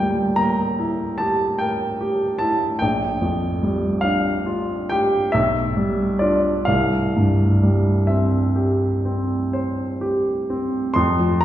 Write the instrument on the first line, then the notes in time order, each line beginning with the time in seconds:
grand piano
Already playing: D2 A#2 G5 A5
0.00 G3
0.36 A#3 A#5
0.79 E4
1.18 G4 A5
1.59 A#4 G5
2.01 G4
2.39 E4 A5
2.79 A#1 G5
3.21 F2
3.63 G3
4.01 D4 F5
4.46 F4
4.89 G4 G5
5.32 B1 E5
5.77 G3
6.19 D4 F4 D5
6.65 C2 F5
7.16 G2
7.63 G3
8.07 C4 E5
8.56 G4
9.05 C4
9.53 C5
10.01 G4
10.50 C4
10.94 F2 C6
11.19 F3
11.41 A#5